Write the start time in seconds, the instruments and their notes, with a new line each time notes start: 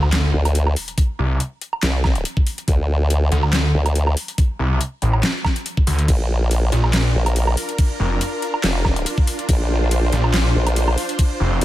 Already playing: detuned saw bass D2, sub drop
0.03 low woodblock
0.13 detuned saw bass D2, snare, clap, closed hi-hat
0.34 wobble bass D2
0.45 closed hi-hat, low woodblock
0.55 closed hi-hat
0.67 low woodblock
0.76 open hi-hat
0.88 closed hi-hat
0.98 kick, closed hi-hat
1.19 detuned saw bass C2
1.40 closed hi-hat
1.61 closed hi-hat
1.73 low woodblock
1.83 wobble bass C2, snare, clap, closed hi-hat
2.04 kick, snare, low woodblock
2.15 closed hi-hat
2.25 closed hi-hat
2.37 kick
2.47 open hi-hat
2.58 closed hi-hat
2.68 wobble bass D2, kick, closed hi-hat
3.10 closed hi-hat
3.32 detuned saw bass D2, closed hi-hat
3.43 low woodblock
3.53 detuned saw bass D2, snare, clap, closed hi-hat
3.74 wobble bass D2
3.86 closed hi-hat, low woodblock
3.95 closed hi-hat
4.07 low woodblock
4.17 open hi-hat
4.28 closed hi-hat
4.38 kick, closed hi-hat
4.59 detuned saw bass C2
4.81 closed hi-hat
5.02 detuned saw bass A1, closed hi-hat
5.13 low woodblock
5.23 snare, clap, closed hi-hat
5.45 kick, snare, low woodblock
5.56 closed hi-hat
5.66 closed hi-hat
5.77 kick
5.87 detuned saw bass D2, open hi-hat
5.99 closed hi-hat
6.08 wobble bass A#1, supersaw synth D4 F4 A#4, kick, closed hi-hat, crash
6.51 closed hi-hat, crash
6.72 detuned saw bass A#1, closed hi-hat
6.84 low woodblock
6.93 detuned saw bass A#1, snare, clap, closed hi-hat, crash
7.15 wobble bass A#1
7.26 closed hi-hat, low woodblock
7.36 closed hi-hat, crash
7.47 low woodblock
7.57 open hi-hat
7.69 closed hi-hat
7.78 kick, closed hi-hat, crash
8.00 detuned saw bass F1
8.21 closed hi-hat, crash
8.42 closed hi-hat
8.54 low woodblock
8.64 wobble bass F1, snare, clap, closed hi-hat, crash
8.85 kick, snare, low woodblock
8.96 closed hi-hat
9.06 closed hi-hat, crash
9.18 kick
9.27 open hi-hat
9.39 closed hi-hat
9.49 wobble bass A#1, supersaw synth C5, kick, closed hi-hat, crash
9.91 closed hi-hat, crash
10.12 detuned saw bass A#1, closed hi-hat
10.24 low woodblock
10.34 detuned saw bass A#1, snare, clap, closed hi-hat, crash
10.55 wobble bass A#1
10.67 closed hi-hat, low woodblock
10.76 closed hi-hat, crash
10.88 low woodblock
10.98 open hi-hat
11.09 closed hi-hat
11.19 kick, closed hi-hat, crash
11.40 detuned saw bass F1
11.61 wobble bass A#1, closed hi-hat, crash